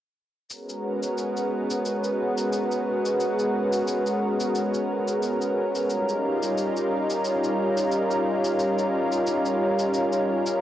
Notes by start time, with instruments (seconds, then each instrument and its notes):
0.49 analog synth pad G#3 B3 C#4 F#4 A#4, shaker
0.69 shaker
1.03 shaker
1.18 shaker
1.37 shaker
1.70 shaker
1.85 shaker
2.04 shaker
2.38 shaker
2.53 shaker
2.71 shaker
3.05 shaker
3.20 shaker
3.39 shaker
3.73 shaker
3.88 shaker
4.06 shaker
4.40 shaker
4.55 shaker
4.74 shaker
5.08 shaker
5.22 shaker
5.41 shaker
5.75 shaker
5.88 analog synth pad G3 D#4 F4, shaker
6.09 shaker
6.43 shaker
6.58 shaker
6.77 shaker
7.10 shaker
7.25 shaker
7.44 shaker
7.77 shaker
7.92 shaker
8.11 shaker
8.44 shaker
8.59 shaker
8.78 shaker
9.12 shaker
9.27 shaker
9.45 shaker
9.79 shaker
9.94 shaker
10.13 shaker
10.46 shaker